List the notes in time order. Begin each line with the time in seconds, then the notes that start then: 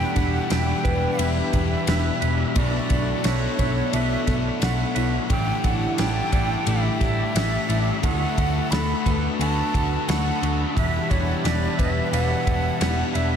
Already playing: E2 B2 E3 G3 D4 E4 G4 B4 E5 G5 B5
0.14 E1 D4 E4 B4 F#5, kick, ride
0.49 E1 E2 B2 G3 D4 E4 B4 G5, snare, ride
0.53 E3
0.83 E1 D4 E4 B4, kick, ride
1.18 E1 E2 B2 E3 G3 D4 E4 B4 E5, ride
1.52 E1 B2 E3 D4 E4 G4 B4, kick, ride
1.87 E1 E2 B2 E3 G3 D4 E4 B4, snare, ride
2.21 E1 D4 E4 B4, ride
2.55 B1 B2 E3 F#3 A3 B3 D4 F#4 A4 B4 D5 C#6, kick, ride
2.89 B1 A3 D4 F#4 B4, kick, ride
3.23 B1 B2 F#3 A3 B3 D4 E4 F#4 C#5, snare, ride
3.28 B4
3.59 B1 D4 F#4 B4 C#5, kick, ride
3.63 A3
3.93 B1 B2 E3 F#3 A3 B3 D4 E4 F#4 B4 E5, ride
4.26 B1 F#3 A3 B3 D4 F#4 A4 B4, kick, snare, ride
4.61 B1 B2 F#3 A3 B3 D4 F#4 B4 F#5, snare, ride
4.95 B1 A3 D4 E4 F#4 B4, ride
5.30 A1 A2 D3 E3 G3 A3 D4 E4 G4 A4 G5 A5 D6, kick, ride
5.64 A1 G3 D4 E4 A4 F#5, kick, ride
5.97 A1 A2 E3 G3 A3 D4 E4 A4 G5, snare, ride
6.32 A1 G3 D4 E4 A4 D5, kick, ride
6.66 A1 A2 D3 E3 G3 A3 D4 E4 A4 E5, ride
7.00 A1 E3 G3 A3 D4 E4 G4 A4, kick, snare, ride
7.34 A1 A2 E3 G3 A3 D4 E4 A4, snare, ride
7.69 A1 G3 D4 E4 A4, ride
8.02 D2 D3 F#3 A3 B3 D4 F#4 A4 F#5 A5 B5, kick, ride
8.37 D2 A3 B3 F#4 A4, kick, ride
8.70 D2 D3 F#3 A3 B3 D4 F#4 A4 B5, snare, ride
9.05 D2 B3 F#4 A4 B4, kick, ride
9.39 D2 D3 F#3 A3 B3 D4 F#4 A4 A5, ride
9.73 D2 A3 B3 D4 F#4 A4, kick, ride
10.07 D2 D3 F#3 A3 B3 D4 F#4 A4 F#5, snare, ride
10.41 D2 D4 F#4 A4, ride
10.45 B3
10.75 E1 E2 B2 E3 G3 D4 E4 G4 B4 E5, kick, ride
11.09 E1 D4 E4 B4 C#5, kick, ride
11.43 E1 E2 B2 G3 D4 E4 B4 D5, snare, ride
11.47 E3
11.77 E1 D4 E4 B4 E5, kick, ride
12.11 E1 E2 B2 E3 G3 D4 E4 B4 F#5, ride
12.15 E3
12.45 E1 E3 D4 E4 G4 B4, kick, ride
12.49 B2
12.79 E1 E2 B2 E3 G3 D4 E4 B4, snare, ride
13.14 E1 D4 E4 B4 E5, ride